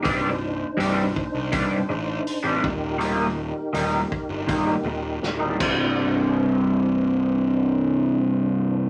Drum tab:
CC |--------|-------x|--------|
HH |o-o-o-o-|o-o-o---|--------|
SD |--------|------o-|--------|
BD |o--oo--o|---oo--o|--------|